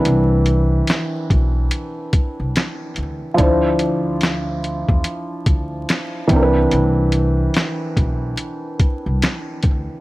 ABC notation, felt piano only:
X:1
M:4/4
L:1/8
Q:"Swing 16ths" 1/4=72
K:C
V:1 name="Felt piano"
[E,CDB]6- [E,CDB] z | [F,DEc]6- [F,DEc] [E,CD_B=B]- | [E,CD_B=B]6- [E,CD_B=B] z |]